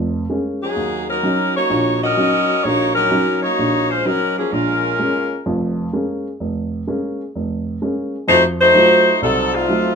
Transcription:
Already playing: upright piano F1 F2
0.30 upright piano G#3 A#3 C#4
0.62 saxophone section F#3 C#4 D#4 G#4
0.76 upright piano D#2
1.09 saxophone section F#3 C#4 D#4 A#4
1.23 upright piano F#3 C#4 D#4
1.56 saxophone section A#3 D#4 F#4 C#5
1.70 upright piano A#1 A#2
2.03 saxophone section C#4 F#4 A#4 D#5
2.17 upright piano F#3 C#4 D#4
2.64 upright piano A#1, saxophone section A#3 D#4 F#4 C#5
2.95 saxophone section F#3 C#4 D#4 A#4
3.11 upright piano F#3 C#4 D#4
3.42 saxophone section A#3 D#4 F#4 C#5
3.59 upright piano A#1
3.90 saxophone section G#3 C#4 F4 C5
4.05 upright piano F#3 C#4 D#4, saxophone section F#3 C#4 D#4 A#4
4.37 saxophone section F3 A#3 C#4 G#4
4.52 upright piano A#1, saxophone section G#3 C#4 F4 A#4
4.99 upright piano G#3 A#3 C#4
5.46 upright piano F1 F2
5.93 upright piano G#3 A#3 C#4
6.40 upright piano F1
6.87 upright piano G#3 A#3 C#4
7.36 upright piano F1
7.82 upright piano G#3 A#3 C#4
8.28 upright piano F2, saxophone section A3 D#4 F#4 C5
8.60 saxophone section A3 D#4 F#4 C5
8.75 upright piano F#3 A3 D#4 F4
9.22 upright piano C2, saxophone section F#3 C4 D#4 A4
9.53 saxophone section A3 C4 D#4 F4
9.69 upright piano F#3 A3 D#4 F4

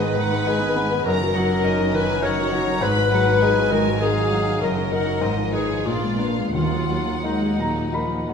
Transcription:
Already playing: double bass section G#1, grand piano G#2 B3 D#4 G#4, cello section G#2, violin section B4 D#5, clarinet B4
0.01 viola section D#3 B3
0.16 grand piano D#3, viola section G#3 D#4, violin section F#5
0.31 viola section D#3 B3
0.46 viola section G#3 D#4, grand piano D#4 G#4, violin section G#5
0.61 viola section D#3 B3
0.76 viola section G#3 D#4, grand piano B3
0.92 viola section D#3 B3
1.05 double bass section F#1, grand piano F#2, cello section F#2, viola section F#3 D#4, clarinet A#4, violin section A#4 A#5
1.21 viola section D#3 F#4
1.35 grand piano F#3, viola section F#3 D#4, violin section F#5
1.50 viola section D#3 F#4
1.64 viola section F#3 D#4, grand piano D#4 A#4, violin section D#5
1.79 viola section D#3 F#4
1.94 grand piano D#3, viola section F#3 D#4, violin section B4 G#5, clarinet B4
2.09 viola section D#3 F#4
2.22 viola section F#3 D#4, grand piano D#4 A#4, violin section C#5 F#5, clarinet C#5
2.38 viola section D#3 F#4
2.51 grand piano F#3, viola section F#3 D#4, violin section A#5
2.67 viola section D#3 F#4
2.81 double bass section G#1, grand piano G#2, cello section G#2, viola section G#3 D#4, violin section B4 B5, clarinet B4
2.97 viola section F#3 F#4
3.12 grand piano F#3, viola section G#3 D#4, violin section F#5
3.27 viola section F#3 F#4
3.41 viola section G#3 D#4, grand piano D#4 G#4, violin section G#5
3.58 viola section F#3 F#4
3.71 grand piano D#3, viola section G#3 D#4, violin section A#4, clarinet A#4
3.87 viola section F#3 F#4
4.01 viola section G#3 D#4, grand piano D#4 G#4, clarinet G#4, violin section G#4 F5
4.18 viola section F#3 F#4
4.31 grand piano F#3, viola section G#3 D#4
4.48 viola section F#3 F#4
4.61 double bass section F#1, grand piano F#2, cello section F#2, viola section D#3 D#4, clarinet A#4, violin section A#4 D#5
4.78 viola section F#3 F#4
4.92 viola section D#3 D#4, grand piano D#4 A#4, violin section F#5
5.07 viola section F#3 F#4
5.21 double bass section G#1, grand piano G#2, cello section G#2, viola section D#3 D#4, violin section D#5
5.38 viola section F3 F4
5.53 viola section D#3 D#4, grand piano D#4 B4, clarinet G#4, violin section G#4 C#5
5.70 viola section F3 F4
5.86 double bass section A#1, grand piano A#2, cello section A#2, viola section A#3 D4, clarinet F4, violin section F4 D5
6.03 viola section G#3 B3
6.18 viola section A#3 D4, grand piano D4 B4, violin section F5
6.37 viola section G#3 B3
6.53 grand piano D#2, double bass section D#2, cello section D#2, timpani D#3, viola section D#3 A#3, clarinet F4, violin section F4 F#5
6.73 viola section F#3 D#4
6.89 viola section D#3 A#3, grand piano F#3
7.08 viola section F#3 D#4
7.23 viola section G#3, grand piano D#4 A#4, violin section D#4, clarinet D#4
7.58 grand piano A#2 A#5, viola section F#3
7.93 viola section F3, grand piano D#4 A#4 B5
8.28 viola section D#3, grand piano F#3

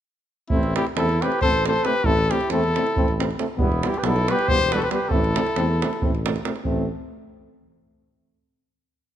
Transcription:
0.49 tuba A1, trombone A3 C4, flugelhorn C4, trumpet E4, davul low
0.63 davul high
0.76 trombone A3 C4, flugelhorn E4, trumpet G4, davul high
0.87 davul high
0.96 tuba E2, trombone A3 C4, flugelhorn E4, trumpet A4, davul high
1.09 davul high
1.22 trombone A3 C4, flugelhorn G4, trumpet B4, davul high
1.32 davul high
1.41 tuba A1, trombone A3 C4, flugelhorn A4, trumpet C5, davul low
1.54 davul high
1.65 trombone A3 C4, flugelhorn A4, trumpet C5, davul high
1.84 trombone A3 C4, flugelhorn G4, trumpet B4, davul high
2.03 tuba A1, trombone A3 C4, flugelhorn E4, trumpet A4, davul low
2.17 davul high
2.30 trombone A3 C4, flugelhorn E4, trumpet G4, davul high
2.41 davul high
2.50 tuba E2, trombone A3 C4, flugelhorn E4, trumpet A4, davul high
2.64 davul high
2.76 trombone A3 C4, davul high
2.87 davul high
2.96 tuba A1, trombone A3 C4, davul low
3.08 davul high
3.19 trombone A3 C4, davul high
3.31 davul high
3.38 trombone A3 C4, davul high
3.57 tuba E1, trombone G3 B3, flugelhorn B3, davul low
3.61 trumpet E4
3.72 davul high
3.83 trombone G3 B3, flugelhorn E4, trumpet G4, davul high
3.94 flugelhorn G4, davul high
3.99 trumpet B4
4.03 tuba B1, trombone G3 B3, flugelhorn E4, trumpet A4, davul high
4.16 davul high
4.28 trombone G3 B3, flugelhorn G4, trumpet B4, davul high
4.39 davul high
4.48 tuba E1, trombone G3 B3, flugelhorn G4, trumpet C5, davul low
4.60 davul high
4.72 trombone G3 B3, flugelhorn G4, trumpet A4 B4, davul high
4.77 flugelhorn F#4
4.82 flugelhorn G4, trumpet B4, davul high
4.91 trombone G3 B3, flugelhorn G4, trumpet B4, davul high
5.09 tuba A1, trombone A3 C4, flugelhorn E4, trumpet A4, davul low
5.24 davul high
5.35 trombone A3 C4, davul high
5.46 davul high
5.56 tuba E2, trombone A3 C4, davul high
5.82 trombone A3 C4, davul high
5.93 davul high
6.02 tuba A1, trombone A3 C4, davul low
6.15 davul high
6.25 trombone A3 C4, davul high
6.36 davul high
6.44 trombone A3 C4, davul high
6.56 davul high
6.64 tuba A1, trombone A3 C4, davul low

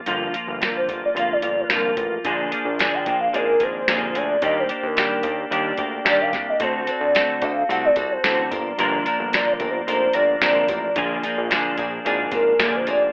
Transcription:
0.06 analog synth bass G1, clean electric guitar G2 D3 F3 A#3 F4, closed hi-hat
0.34 clean electric guitar F3 A#3 F4, closed hi-hat
0.47 analog synth bass G1
0.61 clean electric guitar G2 D3 F3 A#3 F4, soft synth lead A#4, snare, closed hi-hat
0.77 soft synth lead C5
0.88 analog synth bass G1, clean electric guitar F3 A#3 F4, kick, closed hi-hat
1.05 soft synth lead D5
1.15 analog synth bass F1, clean electric guitar D3 F3 A#3 F4, closed hi-hat
1.19 soft synth lead F5
1.33 soft synth lead D5
1.42 analog synth bass G1, clean electric guitar F3 A#3 F4, closed hi-hat
1.60 soft synth lead A#4
1.69 analog synth bass C2, clean electric guitar G2 D3 F3 A#3 F4, snare, closed hi-hat
1.97 analog synth bass A1, clean electric guitar F3 A#3 F4, kick, closed hi-hat
2.24 analog synth bass A#1, clean electric guitar A#2 D3 F3 A#3 D4 G#4, kick, closed hi-hat
2.52 clean electric guitar F3 A#3 D4 G#4, closed hi-hat
2.65 analog synth bass A#1
2.79 clean electric guitar A#2 D3 F3 A#3 D4 G#4, soft synth lead D5, snare, closed hi-hat
2.94 soft synth lead G5
3.06 analog synth bass A#1, clean electric guitar F3 A#3 D4 G#4, kick, closed hi-hat
3.21 soft synth lead F5
3.33 analog synth bass G#1, clean electric guitar F3 A#3 D4 G#4, soft synth lead A#4, closed hi-hat
3.60 analog synth bass G#1, clean electric guitar F3 A#3 D4 G#4, soft synth lead C5, kick, closed hi-hat
3.88 analog synth bass F1, clean electric guitar A#2 D3 F3 A#3 D4 G#4, snare, closed hi-hat
4.15 analog synth bass D2, clean electric guitar F3 A#3 D4 G#4, soft synth lead D5, closed hi-hat
4.42 analog synth bass D#2, clean electric guitar D#3 G3 A#3 D4 G4, soft synth lead D#5, kick, closed hi-hat
4.59 soft synth lead C5
4.69 clean electric guitar A#3 D4 G4, closed hi-hat
4.83 analog synth bass D#2, soft synth lead A#4
4.96 clean electric guitar D#3 G3 A#3 D4 G4, snare, closed hi-hat
5.23 analog synth bass D#2, clean electric guitar A#3 D4 G4, kick, closed hi-hat
5.51 analog synth bass D#2, clean electric guitar G3 A#3 D4 G4, closed hi-hat
5.78 analog synth bass D2, clean electric guitar A#3 D4 G4, kick, closed hi-hat
6.05 analog synth bass D#2, clean electric guitar D#3 G3 A#3 D4 G4, snare, closed hi-hat
6.09 soft synth lead D5
6.21 soft synth lead F5
6.33 analog synth bass C2, clean electric guitar A#3 D4 G4, kick, snare, closed hi-hat
6.49 soft synth lead D#5
6.60 analog synth bass D2, clean electric guitar D3 A3 C4 F#4 A4, soft synth lead C5, kick, closed hi-hat
6.87 clean electric guitar C4 F#4 A4, soft synth lead D5, closed hi-hat, tambourine
7.01 analog synth bass D2
7.15 clean electric guitar D3 A3 C4 F#4 A4, snare, closed hi-hat, tambourine
7.42 analog synth bass D2, clean electric guitar C4 F#4 A4, soft synth lead F5, kick, closed hi-hat, tambourine
7.69 analog synth bass C2, clean electric guitar A3 C4 F#4 A4, soft synth lead F#5, closed hi-hat, tambourine
7.85 soft synth lead D5
7.96 analog synth bass C2, clean electric guitar C4 F#4 A4, kick, closed hi-hat, tambourine
8.12 soft synth lead C5
8.24 analog synth bass A1, clean electric guitar D3 A3 C4 F#4 A4, snare, closed hi-hat, tambourine
8.51 analog synth bass G1, clean electric guitar F3 A#3 D4 A#4, kick, closed hi-hat, tambourine
8.78 analog synth bass G1, clean electric guitar G2 D3 F3 A#3 D4 A#4, closed hi-hat, tambourine
9.05 clean electric guitar F3 A#3 D4 A#4, closed hi-hat, tambourine
9.19 analog synth bass G1
9.33 clean electric guitar G2 D3 F3 A#3 D4 A#4, soft synth lead D5, snare, closed hi-hat, tambourine
9.53 soft synth lead A#4
9.60 analog synth bass G1, clean electric guitar F3 A#3 D4 A#4, kick, closed hi-hat, tambourine
9.69 soft synth lead C5
9.87 analog synth bass F1, clean electric guitar F3 A#3 D4 A#4, closed hi-hat, tambourine
10.13 analog synth bass G1, clean electric guitar F3 A#3 D4 A#4, soft synth lead D5, closed hi-hat, tambourine
10.41 analog synth bass C2, clean electric guitar G2 D3 F3 A#3 D4 A#4, snare, closed hi-hat, tambourine
10.68 analog synth bass A1, clean electric guitar F3 A#3 D4 A#4, kick, closed hi-hat, tambourine
10.96 analog synth bass A#1, clean electric guitar A#2 D3 F3 A#3 D4 G#4, kick, closed hi-hat, tambourine
11.23 clean electric guitar F3 A#3 D4 G#4, closed hi-hat, tambourine
11.38 analog synth bass A#1
11.50 clean electric guitar A#2 D3 F3 A#3 D4 G#4, snare, closed hi-hat, tambourine
11.78 analog synth bass A#1, clean electric guitar F3 A#3 D4 G#4, kick, closed hi-hat, tambourine
12.05 analog synth bass G#1, clean electric guitar F3 A#3 D4 G#4, closed hi-hat, tambourine
12.31 analog synth bass G#1, clean electric guitar F3 A#3 D4 G#4, soft synth lead A#4, kick, closed hi-hat, tambourine
12.59 analog synth bass F1, clean electric guitar A#2 D3 F3 A#3 D4 G#4, snare, closed hi-hat, tambourine
12.76 soft synth lead C5
12.86 analog synth bass F1, clean electric guitar F3 A#3 D4 G#4, soft synth lead D5, closed hi-hat, tambourine

